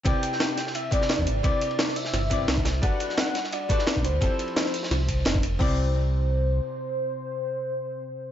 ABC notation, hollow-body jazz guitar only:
X:1
M:4/4
L:1/8
Q:"Swing 16ths" 1/4=173
K:Clyd
V:1 name="Hollow-body jazz guitar"
[C,CEBd]4- [C,CEBd] [C,CEBd]3 | [C,CEBd]4- [C,CEBd] [C,CEBd]3 | [G,DFAB]4- [G,DFAB] [G,DFAB]3 | [=F,CEGA]4- [F,CEGA] z3 |
[C,CEcd]8- | [C,CEcd]8 |]